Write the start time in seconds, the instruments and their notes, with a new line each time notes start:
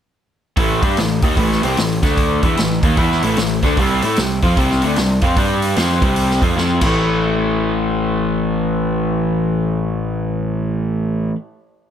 0.57 picked electric bass A1, overdriven electric guitar A2 E3 A3, kick, open hi-hat
0.82 picked electric bass G2, overdriven electric guitar G3 D4 G4, kick, open hi-hat
0.97 picked electric bass A1, overdriven electric guitar A2 E3, snare, open hi-hat
1.22 picked electric bass D#2, overdriven electric guitar D#3 A#3 D#4, kick, open hi-hat
1.37 picked electric bass A1, overdriven electric guitar A2 E3 A3, kick, open hi-hat
1.51 snare
1.63 picked electric bass C2, overdriven electric guitar C3 G3 C4, open hi-hat
1.77 picked electric bass A1, overdriven electric guitar A2 E3, snare, open hi-hat
2.03 picked electric bass D2, overdriven electric guitar D3 A3 D4, kick, snare, open hi-hat
2.17 kick, open hi-hat
2.43 picked electric bass E2, overdriven electric guitar E3 B3 E4, kick, open hi-hat
2.57 picked electric bass A1, overdriven electric guitar A2 E3, snare, open hi-hat
2.83 picked electric bass D#2, overdriven electric guitar D#3 A#3 D#4, kick, open hi-hat
2.97 picked electric bass E2, overdriven electric guitar E3 B3 E4, kick, open hi-hat
3.11 snare
3.23 picked electric bass A1, overdriven electric guitar A2 E3 A3, open hi-hat
3.37 picked electric bass A1, overdriven electric guitar A2 E3, snare, open hi-hat
3.63 picked electric bass D2, overdriven electric guitar D3 A3 D4, kick, snare, open hi-hat
3.77 picked electric bass C2, overdriven electric guitar C3 G3 C4, kick, open hi-hat
4.02 picked electric bass A2, overdriven electric guitar A3 E4 A4, open hi-hat
4.16 picked electric bass C2, overdriven electric guitar C3 G3, snare, open hi-hat
4.42 picked electric bass F2, overdriven electric guitar F3 C4 F4, kick, open hi-hat
4.57 picked electric bass C2, overdriven electric guitar C3 G3 C4, kick, open hi-hat
4.71 snare
4.82 picked electric bass D2, overdriven electric guitar D3 A3 D4, open hi-hat
4.96 picked electric bass C2, overdriven electric guitar C3 G3, snare, open hi-hat
5.21 picked electric bass F2, overdriven electric guitar F3 C4 F4, kick, open hi-hat
5.36 picked electric bass G2, overdriven electric guitar G3 D4 G4, kick, open hi-hat
5.62 open hi-hat
5.76 picked electric bass F2, overdriven electric guitar F3 C4 F4, snare, open hi-hat
6.02 picked electric bass C2, overdriven electric guitar C3 G3 C4, kick, open hi-hat
6.16 open hi-hat
6.30 snare
6.42 picked electric bass F2, overdriven electric guitar F3 C4 F4, kick, open hi-hat
6.56 picked electric bass F2, overdriven electric guitar F3 C4 F4, snare
6.81 picked electric bass A1, overdriven electric guitar A2 E3 A3, kick, crash